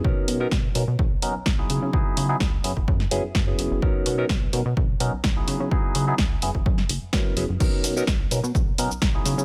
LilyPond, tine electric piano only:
\new Staff \with { instrumentName = "Tine electric piano" } { \time 4/4 \key b \major \tempo 4 = 127 <fis b cis' dis' ais'>8. <fis b cis' dis' ais'>16 r8 <fis b cis' dis' ais'>16 r8. <fis b cis' dis' ais'>16 r8 <fis b dis' e' gis'>8. | <fis b dis' e' gis'>8. <fis b dis' e' gis'>16 r8 <fis b cis' e' gis'>16 r8. <fis b cis' e' gis'>16 r8 <fis b cis' e' gis'>8. | <fis b cis' dis' ais'>8. <fis b cis' dis' ais'>16 r8 <fis b cis' dis' ais'>16 r8. <fis b cis' dis' ais'>16 r8 <fis b dis' e' gis'>8. | <fis b dis' e' gis'>8. <fis b dis' e' gis'>16 r8 <fis b cis' e' gis'>16 r4 r16 <fis b cis' e' ais'>8 <fis b cis' e' gis'>16 r16 |
<fis b cis' dis' ais'>8. <fis b cis' dis' ais'>16 r8 <fis b cis' dis' ais'>16 r8. <fis b cis' dis' ais'>16 r8 <fis b dis' e' gis'>8. | }